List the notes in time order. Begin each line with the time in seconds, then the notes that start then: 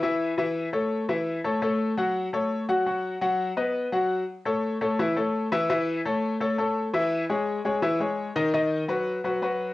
0.03 E3 E4 E5
0.38 E3 E4 E5
0.73 A3 A4 C#5
1.09 E3 E4 E5
1.44 A3 A4 C#5
1.62 A3 A4 C#5
1.97 F#3 F#4 F#5
2.33 A3 A4 C#5
2.69 F#3 F#4 F#5
2.86 F#3 F#4 F#5
3.21 F#3 F#4 F#5
3.57 B3 B4 D#5
3.92 F#3 F#4 F#5
4.45 A3 A4 C#5
4.81 A3 A4 C#5
4.99 E3 E4 E5
5.16 A3 A4 C#5
5.52 E3 E4 E5
5.70 E3 E4 E5
6.05 A3 A4 C#5
6.40 A3 A4 C#5
6.58 A3 A4 C#5
6.94 E3 E4 E5
7.30 G#3 G#4 C#5
7.65 G#3 G#4 C#5
7.82 E3 E4 E5
8.00 G#3 G#4 C#5
8.36 D#3 D#4 D#5
8.54 D#3 D#4 D#5
8.88 F#3 F#4 B4
9.24 F#3 F#4 B4
9.42 F#3 F#4 B4